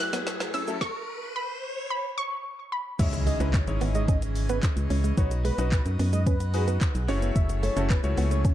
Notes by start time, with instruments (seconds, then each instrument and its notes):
Already playing: pipe organ F#2 F#3 A3 E4 G#5, riser
0.00 synth pluck F#6, snare
0.13 synth arpeggio sound F#3, clean electric guitar B3, snare, shaker
0.27 synth arpeggio sound A3, muted clean electric guitar stroke, snare, closed hi-hat, shaker
0.40 synth arpeggio sound F#3, snare, shaker
0.54 clean electric guitar C#4, synth arpeggio sound E4, synth pluck E6, open hi-hat, shaker
0.67 grand piano F#3 C#4 E4 A4, clean electric guitar A3, shaker
0.81 synth pluck C#6, kick, snare
1.36 synth pluck B5
1.90 synth pluck B5
2.18 synth pluck C#6
2.72 synth pluck B5
2.99 fm bass C#2, pipe organ C#3 E3 C#4 G#4 D#5, grand piano G#3 C#4 D#4 E4 C#5, analog synth lead E5, kick, closed hi-hat, crash, impact, shaker
3.13 muted clean electric guitar stroke, closed hi-hat, shaker
3.26 clean electric guitar G#3, analog synth lead D#5, open hi-hat, shaker
3.40 fm bass C#2, grand piano G#3 C#4 D#4 E4 B4, clean electric guitar C#4, closed hi-hat, shaker
3.54 analog synth lead C#5, muted clean electric guitar stroke, kick, clap, closed hi-hat, shaker
3.67 fm bass G#1, grand piano G#3 C#4 D#4 E4 C#5, closed hi-hat, shaker
3.81 fm bass G#1, clean electric guitar B3, open hi-hat, shaker
3.95 clean electric guitar G#3, analog synth lead D#5, closed hi-hat, shaker
4.08 clean electric guitar C#4, analog synth lead D#5, kick, closed hi-hat, shaker
4.22 muted clean electric guitar stroke, closed hi-hat, shaker
4.36 open hi-hat, shaker
4.49 clean electric guitar B3, analog synth lead B4, closed hi-hat, shaker
4.63 muted clean electric guitar stroke, kick, clap, closed hi-hat, shaker
4.77 fm bass C#2, closed hi-hat, shaker
4.90 fm bass C#2, clean electric guitar C#4, open hi-hat, shaker
5.04 clean electric guitar G#3, closed hi-hat, shaker
5.17 fm bass B1, pipe organ B3 F#4, grand piano D#4 F#4 B4, analog synth lead C#5, kick, closed hi-hat, shaker
5.31 muted clean electric guitar stroke, closed hi-hat, shaker
5.45 clean electric guitar G#3, analog synth lead B4, open hi-hat, shaker
5.58 fm bass B1, clean electric guitar C#4, grand piano D#4 F#4 B4, closed hi-hat, shaker
5.72 analog synth lead B4, muted clean electric guitar stroke, kick, clap, closed hi-hat, shaker
5.86 fm bass F#2, closed hi-hat, shaker
5.99 fm bass F#2, clean electric guitar B3, open hi-hat, shaker
6.13 clean electric guitar G#3, analog synth lead D#5, closed hi-hat, shaker
6.26 clean electric guitar C#4, analog synth lead B4, kick, closed hi-hat, shaker
6.40 muted clean electric guitar stroke, closed hi-hat, shaker
6.54 grand piano D#4 F#4 B4, analog synth lead G#4, open hi-hat, shaker
6.68 clean electric guitar B3, closed hi-hat, shaker
6.81 muted clean electric guitar stroke, kick, clap, closed hi-hat, shaker
6.95 fm bass B1, closed hi-hat, shaker
7.08 fm bass F#1, pipe organ F#3 C#4 E4 G#4 A4, grand piano A3 C#4 E4 F#4 C#5, clean electric guitar C#4, open hi-hat, shaker
7.22 clean electric guitar B3, closed hi-hat, shaker
7.36 fm bass F#1, analog synth lead E5, kick, closed hi-hat, shaker
7.49 muted clean electric guitar stroke, closed hi-hat, shaker
7.63 clean electric guitar A3, analog synth lead C#5, open hi-hat, shaker
7.76 fm bass F#1, grand piano A3 C#4 E4 F#4 A4, clean electric guitar C#4, closed hi-hat, shaker
7.90 analog synth lead B4, muted clean electric guitar stroke, kick, clap, closed hi-hat, shaker
8.04 fm bass C#2, grand piano A3 C#4 E4 F#4 C#5, closed hi-hat, shaker
8.17 fm bass C#2, clean electric guitar B3, open hi-hat, shaker
8.31 clean electric guitar A3, analog synth lead C#5, closed hi-hat, shaker
8.45 clean electric guitar C#4, analog synth lead C#5, kick, closed hi-hat, shaker